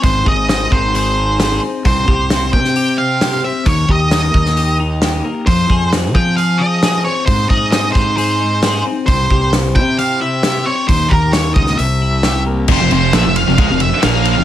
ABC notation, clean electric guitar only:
X:1
M:4/4
L:1/8
Q:1/4=133
K:Cphr
V:1 name="Clean electric guitar"
A,, A C E A E A C | C, G C2 G2 G C | E, G B, E G E G B, | F, A C F A F A C |
A,, A C E A E A C | C, G C =E G E G C | E, G B, E C, =E G B, | z8 |]